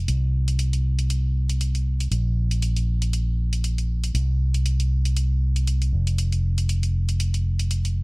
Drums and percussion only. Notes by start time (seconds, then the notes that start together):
0.08 closed hi-hat
0.48 closed hi-hat
0.59 closed hi-hat
0.73 closed hi-hat
0.99 closed hi-hat
1.10 closed hi-hat
1.49 closed hi-hat
1.61 closed hi-hat
1.75 closed hi-hat
2.00 closed hi-hat
2.12 closed hi-hat
2.51 closed hi-hat
2.62 closed hi-hat
2.76 closed hi-hat
3.02 closed hi-hat
3.13 closed hi-hat
3.53 closed hi-hat
3.64 closed hi-hat
3.78 closed hi-hat
4.04 closed hi-hat
4.15 closed hi-hat
4.54 closed hi-hat
4.66 closed hi-hat
4.80 closed hi-hat
5.05 closed hi-hat
5.17 closed hi-hat
5.56 closed hi-hat
5.67 closed hi-hat
5.82 closed hi-hat
6.07 closed hi-hat
6.18 closed hi-hat
6.32 closed hi-hat
6.58 closed hi-hat
6.69 closed hi-hat
6.83 closed hi-hat
7.09 closed hi-hat
7.20 closed hi-hat
7.34 closed hi-hat
7.59 closed hi-hat
7.71 closed hi-hat
7.85 closed hi-hat